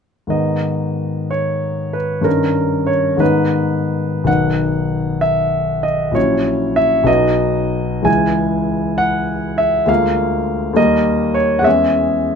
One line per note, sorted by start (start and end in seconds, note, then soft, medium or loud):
0.27 2.19 G#2 soft
0.27 2.20 D#3 soft
0.27 2.21 B3 soft
0.27 2.21 D#4 soft
0.27 1.31 D#5 soft
1.31 1.94 C#5 medium
1.93 2.25 B4 soft
2.21 3.15 G2 soft
2.21 3.16 D#3 soft
2.21 3.16 C#4 soft
2.21 3.17 D#4 soft
2.21 2.87 A#4 soft
2.87 3.20 C#5 medium
3.17 4.22 G#2 soft
3.17 4.23 D#3 soft
3.17 4.23 B3 soft
3.17 4.24 D#4 soft
3.17 4.27 B4 medium
4.24 6.10 B1 soft
4.24 6.11 D#3 soft
4.24 6.12 B3 soft
4.24 6.12 D#4 soft
4.24 5.22 F#5 medium
5.21 5.84 E5 medium
5.83 6.15 D#5 soft
6.11 7.03 A#1 soft
6.11 7.03 F#3 soft
6.11 7.04 C#4 soft
6.11 7.04 E4 soft
6.11 6.77 C#5 medium
6.76 7.07 E5 medium
7.04 8.02 B1 soft
7.04 8.02 F#3 soft
7.04 8.03 B3 soft
7.04 8.04 D#4 soft
7.04 8.07 D#5 medium
8.02 9.83 C#2 soft
8.02 9.83 E3 soft
8.02 9.84 G#3 soft
8.02 9.84 E4 soft
8.02 8.98 G#5 medium
8.98 9.58 F#5 medium
9.58 9.89 E5 medium
9.86 10.73 D2 soft
9.86 10.73 G#3 soft
9.86 10.74 A#3 soft
9.86 10.74 F4 soft
9.86 10.77 F5 medium
10.73 11.61 D#2 soft
10.73 11.61 G3 soft
10.73 11.62 A#3 soft
10.73 11.62 A#4 soft
10.73 11.36 D#5 medium
11.34 11.58 C#5 medium
11.59 12.35 E2 soft
11.59 12.35 G#3 soft
11.59 11.66 F#5 medium
11.63 12.35 C#4 soft
11.63 12.35 G#4 soft
11.63 12.35 E5 medium